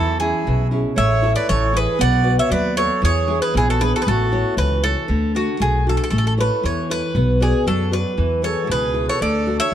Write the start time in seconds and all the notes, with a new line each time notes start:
Already playing: E2 E3 E4 A4
0.19 C#4 E4 G#4
0.47 B1 B2
0.71 C#4 E4 G#4
0.96 A1 A3 C#5 E5
1.22 E4 A4 C#5
1.36 B4 D5
1.49 A1 E3 A4 C#5
1.73 E4 G#4 A4 B4 C#5
1.99 B1 B3 D5 F#5
2.23 F#4 B4 D5
2.39 C#5 E5
2.50 D#2 F#3 B4 D5
2.76 F#4 A4 B4 C#5 D5
3.02 E2 E3 G#4 C#5
3.27 D4 E4 G#4
3.42 G#4 B4
3.54 A#1 B3 E4 G#4
3.69 F#4 A4
3.80 D4 E4 G#4 B4
3.95 F#4 A4
4.01 G#4 B4
4.07 A1 A3 F#4 A4
4.32 E4 A4 C#5
4.57 C#2 E3 B4
4.84 E4 A4 C#5
5.08 D2 D3
5.35 D4 F#4 A4
5.60 B1 A3 G#4
5.87 D4 F#4 A4
5.97 A4
6.04 A4
6.10 A1 A3 A4
6.18 A4
6.27 A4
6.37 E4 A4 B4 C#5
6.63 E2 E3 C#5
6.90 E4 A4 B4 C#5
7.15 B1 B3
7.40 F#4 G#4 B4 D5
7.67 F#2 F#3 A4
7.91 F#4 B4 D5
8.17 E2 E3
8.42 E4 G#4 A4 B4 C#5
8.67 C#2 B2 G#4
8.71 B4
8.93 E4 G#4 B4
9.09 A4 C#5
9.21 D2 D3 A4 D5
9.46 D4 F#4 A4
9.60 C#5 E5